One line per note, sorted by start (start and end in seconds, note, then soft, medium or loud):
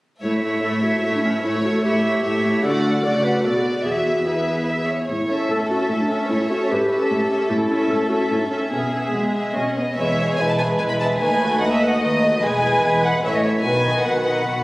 0.22 0.58 A2 soft
0.22 0.42 A3 soft
0.22 0.61 E4 soft
0.22 0.42 E4 soft
0.22 0.41 C#5 soft
0.22 1.40 E5 soft
0.42 0.62 A3 soft
0.42 0.62 E4 soft
0.42 0.62 C#5 soft
0.63 0.99 A2 soft
0.63 0.82 A3 soft
0.63 0.82 E4 soft
0.63 0.85 A4 medium
0.63 0.82 C#5 soft
0.83 1.03 A3 soft
0.83 1.03 E4 soft
0.83 1.05 F#4 soft
0.83 1.02 C#5 soft
1.03 1.40 A2 soft
1.03 1.23 A3 soft
1.03 1.14 E4 soft
1.03 1.23 E4 soft
1.03 1.22 C#5 soft
1.15 1.19 D4 soft
1.23 1.43 A3 soft
1.23 1.34 C#4 medium
1.23 1.43 E4 soft
1.23 1.43 C#5 soft
1.44 1.79 A2 soft
1.44 1.62 A3 soft
1.44 1.63 E4 soft
1.44 1.49 E4 medium
1.44 1.64 C#5 soft
1.44 1.84 C#5 soft
1.56 1.60 E4 medium
1.64 1.82 A3 soft
1.64 1.82 E4 soft
1.64 1.70 F#4 medium
1.64 1.83 C#5 soft
1.78 1.86 A4 soft
1.83 2.19 A2 soft
1.83 2.03 A3 soft
1.83 2.03 E4 soft
1.83 2.66 G4 medium
1.83 2.03 C#5 soft
1.83 2.23 E5 soft
2.04 2.24 A3 soft
2.04 2.23 E4 soft
2.04 2.22 C#5 soft
2.24 2.59 A2 medium
2.24 2.43 A3 soft
2.24 2.43 E4 soft
2.24 2.43 C#5 soft
2.24 2.63 E5 soft
2.44 2.63 A3 soft
2.44 2.63 E4 soft
2.44 2.64 C#5 soft
2.64 3.01 D3 soft
2.64 3.01 A3 soft
2.64 3.01 F#4 soft
2.64 3.06 A4 medium
2.64 3.01 D5 soft
2.64 3.03 F#5 soft
3.03 3.43 C#3 soft
3.03 3.43 A3 soft
3.03 3.43 F#4 soft
3.03 3.26 D5 medium
3.03 3.43 D5 soft
3.03 3.43 F#5 soft
3.24 3.48 B4 medium
3.44 3.85 B2 soft
3.44 3.84 B3 soft
3.44 3.84 F#4 soft
3.44 3.55 A4 soft
3.44 3.85 D5 soft
3.44 3.84 D5 soft
3.56 3.60 G#4 soft
3.67 3.86 F#4 soft
3.84 4.89 E2 soft
3.84 4.25 B3 soft
3.84 4.29 F#4 soft
3.84 4.25 G#4 soft
3.84 4.25 E5 soft
3.84 4.23 E5 soft
4.26 4.87 B3 soft
4.26 4.68 E4 soft
4.26 4.88 G#4 soft
4.26 4.65 B4 soft
4.26 4.87 E5 soft
4.67 4.88 E5 soft
4.88 5.08 C#5 soft
5.09 5.43 A2 soft
5.09 5.48 E4 medium
5.09 5.47 C#5 soft
5.30 5.69 C#4 soft
5.30 5.69 A4 soft
5.30 5.69 E5 soft
5.50 5.84 A2 soft
5.50 5.60 A4 medium
5.50 6.31 A4 soft
5.70 6.09 C#4 soft
5.70 5.79 F#4 medium
5.70 6.09 A4 soft
5.70 6.09 E5 soft
5.91 6.24 A2 soft
5.91 5.99 E4 soft
6.00 6.11 D4 soft
6.10 6.30 C#4 soft
6.10 6.30 A4 soft
6.10 6.30 E5 soft
6.30 6.64 A2 soft
6.30 6.51 C#4 soft
6.30 6.35 E4 medium
6.30 6.51 A4 soft
6.30 6.70 C#5 soft
6.30 6.50 E5 soft
6.41 6.45 E4 medium
6.50 6.90 C#4 soft
6.50 6.59 F#4 medium
6.50 6.90 A4 soft
6.50 6.90 E5 soft
6.70 7.05 A2 soft
6.70 7.52 G4 medium
6.70 7.10 B4 soft
6.91 7.30 C#4 soft
6.91 7.29 A4 soft
6.91 7.29 E5 soft
7.09 7.44 A2 medium
7.09 8.69 A4 medium
7.30 7.50 C#4 soft
7.30 7.50 A4 soft
7.30 7.50 E5 soft
7.50 7.84 A2 medium
7.50 7.90 E4 medium
7.70 8.09 C#4 soft
7.70 8.09 A4 soft
7.70 8.09 E5 soft
7.90 8.24 A2 medium
7.90 8.09 A4 medium
8.09 8.50 C#4 soft
8.09 8.19 F#4 medium
8.09 8.49 A4 soft
8.09 8.49 E5 soft
8.30 8.66 A2 soft
8.30 8.41 E4 soft
8.39 8.49 D#4 soft
8.50 8.70 C#4 medium
8.50 8.72 C#4 soft
8.50 8.72 A4 soft
8.50 8.70 E5 soft
8.71 9.08 B2 soft
8.71 8.93 B3 soft
8.71 9.15 C#4 medium
8.71 9.75 G#4 soft
8.71 8.93 G#4 soft
8.71 8.91 E5 soft
8.92 9.10 B3 soft
8.92 9.10 G#4 soft
8.92 9.34 E5 soft
9.13 9.50 B2 soft
9.13 9.54 G#3 soft
9.13 9.56 B3 soft
9.35 9.56 E5 soft
9.56 9.92 B2 soft
9.56 9.78 C#4 soft
9.56 9.75 D#5 soft
9.76 9.99 B3 soft
9.76 9.98 D#5 soft
9.97 10.34 E1 soft
9.97 10.34 E2 soft
9.97 10.36 G#3 soft
9.97 10.18 G#3 soft
9.97 10.18 E4 soft
9.97 10.35 B4 soft
9.97 10.18 B4 soft
9.97 10.19 B4 soft
9.97 10.37 C#5 soft
9.97 10.36 E5 soft
10.18 10.38 G#3 soft
10.18 10.40 G#4 soft
10.18 10.39 B4 soft
10.18 10.39 E5 soft
10.36 10.75 E1 soft
10.36 10.75 E2 soft
10.36 10.59 G#3 soft
10.36 10.79 G#3 soft
10.36 10.60 E4 soft
10.36 10.79 B4 soft
10.36 10.59 B4 soft
10.36 10.60 B4 soft
10.36 11.20 B4 soft
10.36 10.48 G#5 soft
10.49 10.53 A5 soft
10.59 10.79 G#3 soft
10.59 10.80 G#4 soft
10.59 10.78 B4 soft
10.59 10.81 E5 soft
10.59 10.67 G#5 soft
10.79 11.16 E1 soft
10.79 11.16 E2 soft
10.79 10.99 G#3 soft
10.79 11.20 G#3 soft
10.79 11.00 E4 soft
10.79 10.99 B4 soft
10.79 11.18 B4 soft
10.79 11.00 B4 soft
10.79 10.83 G#5 soft
10.89 10.94 B5 soft
11.00 11.20 G#3 soft
11.00 11.21 G#4 soft
11.00 11.20 B4 soft
11.00 11.21 E5 soft
11.00 11.08 A5 soft
11.20 11.56 D#2 soft
11.20 11.60 A3 soft
11.20 11.40 A3 soft
11.20 11.40 D#4 soft
11.20 11.59 B4 soft
11.20 11.40 B4 soft
11.20 11.60 B4 soft
11.20 11.40 B4 soft
11.20 11.60 G#5 medium
11.40 11.60 A3 soft
11.40 11.62 F#4 soft
11.40 11.61 A4 soft
11.40 11.60 B4 soft
11.61 11.96 D#2 soft
11.61 11.97 D#2 soft
11.61 11.80 A3 soft
11.61 12.00 A3 soft
11.61 11.81 D#4 soft
11.61 12.00 B4 soft
11.61 11.81 B4 soft
11.61 12.40 D#5 medium
11.61 11.71 F#5 medium
11.71 11.81 E5 medium
11.81 12.01 A3 soft
11.81 12.01 F#4 soft
11.81 12.01 A4 soft
11.81 12.01 B4 soft
11.81 12.02 F#5 medium
12.01 12.37 D#2 medium
12.01 12.38 D#2 medium
12.01 12.21 A3 soft
12.01 12.42 A3 soft
12.01 12.21 D#4 soft
12.01 12.21 B4 soft
12.01 12.20 B4 soft
12.01 12.42 B4 soft
12.01 12.42 D#5 medium
12.22 12.42 A3 soft
12.22 12.42 F#4 soft
12.22 12.42 A4 soft
12.22 12.42 B4 soft
12.42 12.78 E1 medium
12.42 12.78 E2 medium
12.42 12.62 G#3 medium
12.42 13.20 G#3 soft
12.42 12.61 G#4 soft
12.42 13.21 B4 medium
12.42 12.61 B4 soft
12.42 12.63 B4 medium
12.42 13.20 B4 soft
12.42 13.03 G#5 medium
12.62 12.82 G#3 soft
12.62 12.82 E4 soft
12.62 12.82 G#4 soft
12.62 12.83 B4 soft
12.83 13.18 E1 medium
12.83 13.19 E2 medium
12.83 13.02 G#3 soft
12.83 13.02 G#4 soft
12.83 13.03 B4 soft
13.03 13.23 G#3 soft
13.03 13.23 E4 soft
13.03 13.23 G#4 soft
13.03 13.23 B4 soft
13.03 13.23 F#5 medium
13.23 13.59 A1 soft
13.23 13.59 A2 soft
13.23 13.64 E3 soft
13.23 13.43 E3 soft
13.23 13.42 C#4 soft
13.23 13.64 A4 soft
13.23 13.44 A4 soft
13.23 13.42 C#5 soft
13.23 13.64 C#5 soft
13.23 13.34 E5 medium
13.34 13.43 D#5 medium
13.43 13.63 E3 soft
13.43 13.64 E4 soft
13.43 13.64 A4 soft
13.43 13.51 C#5 medium
13.43 13.64 E5 soft
13.63 14.00 B1 soft
13.63 14.00 B2 soft
13.63 13.84 D#3 soft
13.63 14.04 D#3 soft
13.63 13.82 F#4 soft
13.63 13.82 B4 soft
13.63 14.04 B4 soft
13.63 13.84 B4 soft
13.63 14.63 B4 soft
13.63 14.03 G#5 medium
13.84 14.04 D#3 soft
13.84 14.05 D#4 soft
13.84 14.04 B4 soft
13.84 14.05 D#5 soft
14.03 14.41 B1 soft
14.03 14.41 B2 soft
14.03 14.24 D#3 soft
14.03 14.63 D#3 soft
14.03 14.25 F#4 soft
14.03 14.25 B4 soft
14.03 14.63 B4 soft
14.03 14.63 F#5 soft
14.25 14.45 D#3 soft
14.25 14.46 D#4 soft
14.25 14.45 B4 soft
14.25 14.46 D#5 soft
14.45 14.63 B1 soft
14.45 14.63 B2 soft
14.45 14.63 D#3 soft
14.45 14.63 F#4 soft
14.45 14.63 B4 soft